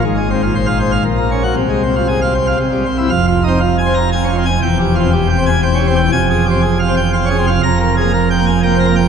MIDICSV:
0, 0, Header, 1, 2, 480
1, 0, Start_track
1, 0, Key_signature, -4, "minor"
1, 0, Tempo, 509771
1, 40, Time_signature, 3, 2, 24, 8
1, 3880, Tempo, 500417
1, 8639, End_track
2, 0, Start_track
2, 0, Title_t, "Pipe organ"
2, 0, Program_c, 0, 19
2, 39, Note_on_c, 0, 32, 104
2, 42, Note_on_c, 0, 44, 102
2, 161, Note_on_c, 0, 56, 72
2, 265, Note_off_c, 0, 56, 0
2, 283, Note_on_c, 0, 60, 76
2, 386, Note_off_c, 0, 60, 0
2, 398, Note_on_c, 0, 65, 69
2, 503, Note_off_c, 0, 65, 0
2, 518, Note_on_c, 0, 72, 68
2, 622, Note_off_c, 0, 72, 0
2, 626, Note_on_c, 0, 77, 93
2, 735, Note_off_c, 0, 77, 0
2, 749, Note_on_c, 0, 72, 81
2, 857, Note_off_c, 0, 72, 0
2, 865, Note_on_c, 0, 77, 80
2, 962, Note_off_c, 0, 32, 0
2, 964, Note_off_c, 0, 44, 0
2, 969, Note_off_c, 0, 77, 0
2, 984, Note_on_c, 0, 46, 87
2, 988, Note_on_c, 0, 34, 96
2, 1110, Note_on_c, 0, 58, 58
2, 1218, Note_off_c, 0, 58, 0
2, 1237, Note_on_c, 0, 61, 65
2, 1344, Note_off_c, 0, 61, 0
2, 1348, Note_on_c, 0, 66, 85
2, 1454, Note_off_c, 0, 66, 0
2, 1457, Note_off_c, 0, 46, 0
2, 1459, Note_off_c, 0, 34, 0
2, 1473, Note_on_c, 0, 48, 89
2, 1475, Note_on_c, 0, 36, 94
2, 1594, Note_on_c, 0, 56, 63
2, 1703, Note_off_c, 0, 56, 0
2, 1719, Note_on_c, 0, 60, 63
2, 1826, Note_off_c, 0, 60, 0
2, 1844, Note_on_c, 0, 65, 67
2, 1949, Note_off_c, 0, 65, 0
2, 1960, Note_on_c, 0, 68, 68
2, 2067, Note_off_c, 0, 68, 0
2, 2088, Note_on_c, 0, 77, 89
2, 2192, Note_off_c, 0, 77, 0
2, 2210, Note_on_c, 0, 72, 67
2, 2313, Note_off_c, 0, 72, 0
2, 2327, Note_on_c, 0, 77, 70
2, 2412, Note_off_c, 0, 36, 0
2, 2412, Note_off_c, 0, 48, 0
2, 2427, Note_off_c, 0, 77, 0
2, 2443, Note_on_c, 0, 48, 77
2, 2444, Note_on_c, 0, 36, 81
2, 2562, Note_on_c, 0, 55, 56
2, 2671, Note_off_c, 0, 55, 0
2, 2686, Note_on_c, 0, 60, 64
2, 2793, Note_off_c, 0, 60, 0
2, 2804, Note_on_c, 0, 64, 81
2, 2907, Note_off_c, 0, 64, 0
2, 2912, Note_off_c, 0, 48, 0
2, 2913, Note_off_c, 0, 36, 0
2, 2917, Note_on_c, 0, 29, 98
2, 2917, Note_on_c, 0, 41, 99
2, 2918, Note_on_c, 0, 77, 93
2, 3063, Note_off_c, 0, 77, 0
2, 3081, Note_on_c, 0, 65, 75
2, 3225, Note_off_c, 0, 65, 0
2, 3237, Note_on_c, 0, 63, 72
2, 3273, Note_on_c, 0, 60, 73
2, 3376, Note_off_c, 0, 63, 0
2, 3385, Note_off_c, 0, 60, 0
2, 3393, Note_on_c, 0, 65, 74
2, 3540, Note_off_c, 0, 65, 0
2, 3561, Note_on_c, 0, 80, 81
2, 3635, Note_on_c, 0, 60, 71
2, 3703, Note_off_c, 0, 80, 0
2, 3715, Note_on_c, 0, 82, 80
2, 3744, Note_off_c, 0, 60, 0
2, 3852, Note_off_c, 0, 82, 0
2, 3882, Note_on_c, 0, 80, 90
2, 3883, Note_on_c, 0, 60, 80
2, 3989, Note_off_c, 0, 60, 0
2, 4002, Note_on_c, 0, 61, 62
2, 4024, Note_off_c, 0, 80, 0
2, 4043, Note_on_c, 0, 65, 63
2, 4103, Note_off_c, 0, 61, 0
2, 4127, Note_on_c, 0, 60, 71
2, 4184, Note_off_c, 0, 65, 0
2, 4199, Note_on_c, 0, 80, 77
2, 4230, Note_off_c, 0, 60, 0
2, 4316, Note_off_c, 0, 29, 0
2, 4316, Note_off_c, 0, 41, 0
2, 4335, Note_off_c, 0, 80, 0
2, 4361, Note_on_c, 0, 79, 90
2, 4363, Note_on_c, 0, 28, 94
2, 4364, Note_on_c, 0, 40, 104
2, 4503, Note_off_c, 0, 79, 0
2, 4520, Note_on_c, 0, 67, 76
2, 4662, Note_off_c, 0, 67, 0
2, 4679, Note_on_c, 0, 65, 63
2, 4724, Note_on_c, 0, 60, 71
2, 4815, Note_off_c, 0, 65, 0
2, 4829, Note_off_c, 0, 60, 0
2, 4844, Note_on_c, 0, 67, 79
2, 4985, Note_off_c, 0, 67, 0
2, 5002, Note_on_c, 0, 79, 77
2, 5089, Note_on_c, 0, 60, 71
2, 5144, Note_off_c, 0, 79, 0
2, 5167, Note_on_c, 0, 80, 87
2, 5192, Note_off_c, 0, 60, 0
2, 5300, Note_off_c, 0, 80, 0
2, 5323, Note_on_c, 0, 60, 82
2, 5325, Note_on_c, 0, 79, 85
2, 5430, Note_off_c, 0, 60, 0
2, 5443, Note_on_c, 0, 61, 56
2, 5466, Note_off_c, 0, 79, 0
2, 5484, Note_on_c, 0, 67, 65
2, 5545, Note_off_c, 0, 61, 0
2, 5557, Note_on_c, 0, 60, 76
2, 5626, Note_off_c, 0, 67, 0
2, 5640, Note_on_c, 0, 79, 83
2, 5666, Note_off_c, 0, 60, 0
2, 5766, Note_off_c, 0, 28, 0
2, 5766, Note_off_c, 0, 40, 0
2, 5777, Note_off_c, 0, 79, 0
2, 5799, Note_on_c, 0, 29, 100
2, 5800, Note_on_c, 0, 80, 120
2, 5801, Note_on_c, 0, 41, 104
2, 5944, Note_off_c, 0, 80, 0
2, 5972, Note_on_c, 0, 68, 80
2, 6111, Note_off_c, 0, 68, 0
2, 6125, Note_on_c, 0, 67, 73
2, 6168, Note_on_c, 0, 60, 71
2, 6260, Note_off_c, 0, 67, 0
2, 6273, Note_off_c, 0, 60, 0
2, 6283, Note_on_c, 0, 68, 78
2, 6426, Note_off_c, 0, 68, 0
2, 6445, Note_on_c, 0, 77, 85
2, 6531, Note_on_c, 0, 60, 77
2, 6587, Note_off_c, 0, 77, 0
2, 6610, Note_on_c, 0, 79, 73
2, 6635, Note_off_c, 0, 60, 0
2, 6743, Note_off_c, 0, 79, 0
2, 6768, Note_on_c, 0, 60, 80
2, 6769, Note_on_c, 0, 77, 91
2, 6874, Note_off_c, 0, 60, 0
2, 6888, Note_on_c, 0, 61, 59
2, 6910, Note_off_c, 0, 77, 0
2, 6931, Note_on_c, 0, 68, 69
2, 6989, Note_off_c, 0, 61, 0
2, 7007, Note_on_c, 0, 60, 77
2, 7071, Note_off_c, 0, 68, 0
2, 7095, Note_on_c, 0, 77, 89
2, 7113, Note_off_c, 0, 60, 0
2, 7205, Note_off_c, 0, 29, 0
2, 7206, Note_off_c, 0, 41, 0
2, 7226, Note_off_c, 0, 77, 0
2, 7250, Note_on_c, 0, 82, 127
2, 7251, Note_on_c, 0, 41, 117
2, 7255, Note_on_c, 0, 29, 119
2, 7391, Note_off_c, 0, 82, 0
2, 7407, Note_on_c, 0, 70, 82
2, 7550, Note_off_c, 0, 70, 0
2, 7574, Note_on_c, 0, 68, 78
2, 7612, Note_on_c, 0, 58, 79
2, 7707, Note_off_c, 0, 68, 0
2, 7717, Note_off_c, 0, 58, 0
2, 7732, Note_on_c, 0, 70, 87
2, 7873, Note_off_c, 0, 70, 0
2, 7892, Note_on_c, 0, 79, 89
2, 7973, Note_on_c, 0, 58, 73
2, 8032, Note_off_c, 0, 79, 0
2, 8047, Note_on_c, 0, 80, 74
2, 8077, Note_off_c, 0, 58, 0
2, 8182, Note_off_c, 0, 80, 0
2, 8204, Note_on_c, 0, 58, 85
2, 8208, Note_on_c, 0, 79, 95
2, 8311, Note_off_c, 0, 58, 0
2, 8318, Note_on_c, 0, 60, 67
2, 8349, Note_off_c, 0, 79, 0
2, 8364, Note_on_c, 0, 70, 74
2, 8422, Note_off_c, 0, 60, 0
2, 8437, Note_on_c, 0, 58, 78
2, 8505, Note_off_c, 0, 70, 0
2, 8518, Note_on_c, 0, 79, 91
2, 8545, Note_off_c, 0, 58, 0
2, 8639, Note_off_c, 0, 29, 0
2, 8639, Note_off_c, 0, 41, 0
2, 8639, Note_off_c, 0, 79, 0
2, 8639, End_track
0, 0, End_of_file